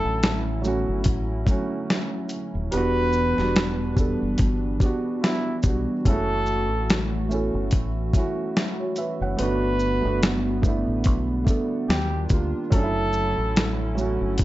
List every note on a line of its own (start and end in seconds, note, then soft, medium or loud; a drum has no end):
0.00 2.69 D3 medium
0.00 0.19 F#3 medium
0.00 2.69 F#3 medium
0.00 0.20 A3 medium
0.00 0.21 C#4 medium
0.00 2.69 C#4 medium
0.00 0.26 E4 loud
0.00 2.69 E4 medium
0.00 0.42 A4 loud
0.05 0.84 A1 loud
0.23 snare loud
0.23 closed hi-hat medium
0.62 1.19 F#3 medium
0.62 1.20 A3 medium
0.62 1.21 C#4 medium
0.62 shaker soft
0.67 1.21 F#4 loud
0.89 1.05 G1 medium
1.04 1.44 A1 medium
1.04 kick loud
1.04 closed hi-hat medium
1.46 2.28 F#3 medium
1.46 2.29 A3 medium
1.46 2.30 C#4 medium
1.46 kick medium
1.46 closed hi-hat soft
1.46 shaker soft
1.51 2.31 F#4 loud
1.90 snare loud
1.90 closed hi-hat medium
2.29 closed hi-hat soft
2.29 shaker soft
2.55 2.71 D#1 medium
2.71 3.34 E1 loud
2.71 6.02 E3 medium
2.71 3.12 G3 loud
2.71 6.02 G3 medium
2.71 3.14 B3 medium
2.71 6.02 D4 medium
2.71 3.14 D4 medium
2.71 11.85 F#4 loud
2.71 3.75 B4 loud
2.71 closed hi-hat medium
2.77 3.15 F#4 loud
3.13 shaker soft
3.36 4.17 E1 medium
3.36 3.77 G3 medium
3.36 3.78 B3 medium
3.36 3.79 D4 medium
3.36 snare soft
3.42 3.80 F#4 medium
3.56 snare loud
3.56 closed hi-hat medium
3.94 4.52 G3 medium
3.94 4.53 B3 medium
3.94 4.54 D4 medium
3.94 kick medium
3.94 shaker soft
4.00 4.54 A4 medium
4.22 4.38 F#1 medium
4.38 4.77 G1 medium
4.38 kick medium
4.38 closed hi-hat medium
4.80 5.36 G3 medium
4.80 5.37 B3 medium
4.80 5.38 D4 medium
4.80 kick medium
4.80 closed hi-hat soft
4.80 shaker soft
4.85 5.39 F#4 loud
5.22 5.60 E4 medium
5.22 snare loud
5.22 closed hi-hat medium
5.63 5.86 B1 medium
5.63 5.92 G3 medium
5.63 5.93 B3 medium
5.63 kick medium
5.63 closed hi-hat soft
5.63 shaker soft
5.67 5.94 D4 medium
5.67 5.95 F#4 medium
6.04 6.71 F#1 loud
6.04 9.36 E3 medium
6.04 6.12 G#3 medium
6.04 9.36 A3 medium
6.04 9.36 C#4 medium
6.04 6.88 C#4 medium
6.04 6.88 E4 medium
6.04 7.09 A4 loud
6.04 kick loud
6.04 closed hi-hat medium
6.10 6.90 A3 loud
6.10 6.89 F#4 loud
6.46 shaker soft
6.71 7.50 A1 medium
6.90 snare loud
6.90 closed hi-hat medium
7.29 7.86 A3 medium
7.29 7.86 C#4 medium
7.29 7.87 E4 medium
7.29 shaker soft
7.34 7.88 A4 medium
7.54 7.71 G1 medium
7.71 8.11 A1 medium
7.71 kick loud
7.71 closed hi-hat medium
8.13 8.95 A3 medium
8.13 8.96 C#4 medium
8.13 8.97 E4 medium
8.13 kick medium
8.13 closed hi-hat soft
8.13 shaker soft
8.19 8.58 F#4 loud
8.57 snare loud
8.57 closed hi-hat medium
8.80 8.97 F#4 medium
8.80 8.97 C#5 medium
8.96 9.20 B4 medium
8.96 9.20 E5 medium
8.96 closed hi-hat soft
8.96 shaker soft
9.21 9.38 F#1 medium
9.21 9.61 C#5 medium
9.21 9.61 F#5 medium
9.37 10.00 G1 medium
9.37 11.87 D3 medium
9.37 12.69 G3 medium
9.37 9.79 A3 medium
9.37 9.80 B3 medium
9.37 11.86 B3 medium
9.37 9.80 D4 medium
9.37 10.42 B4 loud
9.37 closed hi-hat medium
9.43 9.82 F#4 loud
9.79 shaker soft
10.01 10.84 G1 medium
10.01 10.43 A3 medium
10.01 10.44 B3 medium
10.01 10.45 D4 medium
10.07 10.46 F#4 medium
10.23 snare loud
10.23 closed hi-hat medium
10.62 11.19 A3 medium
10.62 11.19 B3 medium
10.62 11.20 D4 medium
10.62 kick medium
10.62 shaker soft
10.67 11.21 E4 loud
10.88 11.06 A1 medium
11.04 11.44 B1 medium
11.04 kick loud
11.04 closed hi-hat medium
11.45 11.87 A3 medium
11.45 11.88 B3 medium
11.45 11.89 D4 medium
11.45 kick medium
11.45 closed hi-hat soft
11.45 shaker soft
11.50 11.90 A4 medium
11.89 12.27 D#2 loud
11.89 12.71 D#3 medium
11.89 12.71 D4 medium
11.89 12.71 F4 medium
11.89 12.26 G4 medium
11.89 snare loud
11.89 closed hi-hat medium
12.28 12.52 D2 loud
12.28 12.58 G3 medium
12.28 12.59 A#3 medium
12.28 12.60 D4 medium
12.28 kick medium
12.28 closed hi-hat soft
12.28 shaker soft
12.34 12.61 F4 medium
12.70 13.33 F#1 loud
12.70 14.44 D3 medium
12.70 13.53 F#3 loud
12.70 14.44 F#3 medium
12.70 13.54 A3 medium
12.70 14.44 C#4 medium
12.70 13.55 C#4 loud
12.70 14.44 E4 medium
12.70 13.75 A4 loud
12.70 kick loud
12.70 closed hi-hat medium
12.76 12.81 D4 medium
12.83 13.59 E4 loud
13.13 shaker soft
13.38 14.17 A1 medium
13.56 snare loud
13.56 closed hi-hat medium
13.95 14.44 F#3 medium
13.95 14.44 A3 medium
13.95 14.44 C#4 medium
13.95 shaker soft
14.01 14.44 F#4 loud
14.21 14.38 G1 medium
14.38 14.44 A1 medium
14.38 kick medium
14.38 closed hi-hat medium